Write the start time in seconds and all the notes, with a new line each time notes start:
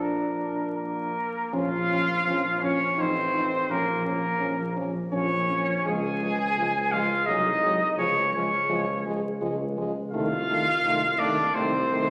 Already playing: A#1 F3 D4
0.01 A#4
0.76 A#3 A#4
1.52 A#1 F3 C#4 F4 F5
1.90 F3 C#4
2.25 A#1 F3 C#4
2.60 F3 C#4 C#5
2.97 A1 F3 C4 D#4 C5
3.33 F3 D#4
3.69 A#1 F3 A#3 C#4 A#4
4.04 F3 A#3 C#4 A#4
4.40 A#1 F3 C#4
4.76 F3 C#4
5.12 A#1 F3 C#4 C#5
5.49 F3 C#4
5.84 C#2 F3 G#3 G#4 G#5
6.22 F3 G#3
6.57 C#2 F3 G#3
6.91 F3 G#3 F4 F5
7.26 C2 F#3 G#3 D#4 D#5
7.63 F#3 G#3
7.97 C#2 F3 G#3 C#4 C#5
8.33 F3 G#3 C#4 C#5
8.69 C#2 F3 G#3
9.05 F3 G#3
9.41 C#2 F3 G#3
9.77 F3 G#3
10.11 C2 D#3 A3 F4 F5
10.48 D#3 A3
10.83 C2 D#3 A3
11.19 D#3 A3 D4 D5
11.54 C2 D#3 A3 C4 C5
11.92 D#3 A3